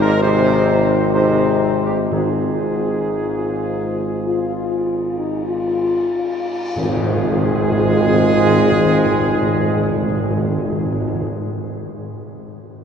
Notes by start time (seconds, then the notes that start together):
Already playing: G#1 G#3 D#4
0.01 A#2 A#4
0.22 C3 G#3 D#4 C5
1.12 C3 G#3 D#4 C5
1.85 G2 G4
2.11 G#1 G#2 C4 F4 G#4
3.16 F4
4.26 F4
5.17 D#4
5.46 F4
6.75 G#1 G#2 G#3 C4 F4 G#4, tam-tam
6.83 G#2
6.90 G#2
6.97 G#2
7.04 G#2
7.10 G#2
7.17 G#2
7.24 G#2
7.31 G#2
7.37 G#2
7.44 G#2
7.51 G#2
7.58 G#2
7.65 G#2
7.72 G#2
7.79 G#2
7.86 G#2
7.93 G#2
8.00 G#2
8.07 G#2
8.14 G#2
8.21 G#2
8.29 G#2
8.37 G#2
8.44 G#2
8.51 G#2
8.58 G#2
8.65 G#2
8.72 G#2
8.79 G#2
8.86 G#2
8.93 G#2
8.99 G#2
9.06 G#2
9.13 G#2
9.21 G#2
9.28 G#2
9.35 G#2
9.42 G#2
9.49 G#2
9.56 G#2
9.63 G#2
9.70 G#2
9.76 G#2
9.83 G#2
9.90 G#2
9.96 G#2
10.03 G#2
10.10 G#2
10.17 G#2
10.24 G#2
10.31 G#2
10.38 G#2
10.45 G#2
10.51 G#2
10.58 G#2
10.65 G#2
10.72 G#2
10.79 G#2
10.86 G#2
10.93 G#2
11.00 G#2
11.08 G#2
11.15 G#2
11.22 G#2